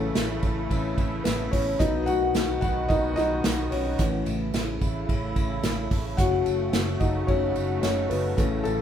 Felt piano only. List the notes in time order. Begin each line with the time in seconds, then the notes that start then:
Already playing: E3 A3 C#4 A4
0.70 E3 A3 C#4
1.24 B3 B4
1.51 C#4 C#5
1.79 F#3 B3 D#4 D#5
2.06 F#4 F#5
2.61 F#4 F#5
2.88 D#4 D#5
3.16 D#4 D#5
3.71 C#4 C#5
3.99 E3 A3 C#4
6.17 F#3 A3 C#4 F#4 F#5
7.00 D#4 D#5
7.27 F#3 A3 C#4 C#5
7.82 C#4 C#5
8.09 B3 B4
8.37 E3 A3 C#4 A4
8.64 A3 A4